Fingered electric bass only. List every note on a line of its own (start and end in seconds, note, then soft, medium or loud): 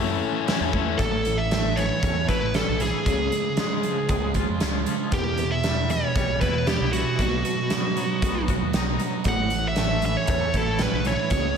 0.00 0.19 F#2 medium
0.60 0.94 E2 medium
0.99 1.90 A1 medium
2.03 2.26 E2 medium
2.28 2.62 A1 medium
2.69 2.91 B1 medium
3.06 3.29 C#2 medium
4.10 4.43 C#2 medium
4.49 4.60 F2 medium
4.62 4.84 C#2 medium
5.12 6.03 E2 medium
6.16 6.38 B1 medium
6.42 6.76 E2 medium
6.81 7.03 C2 medium
7.19 7.42 B1 medium
8.22 8.56 B1 medium
8.61 8.72 D#2 medium
8.74 8.96 B1 medium
9.25 10.15 A1 medium
10.28 10.51 E2 medium
10.54 10.88 A1 medium
10.93 11.15 B1 medium
11.31 11.54 C#2 medium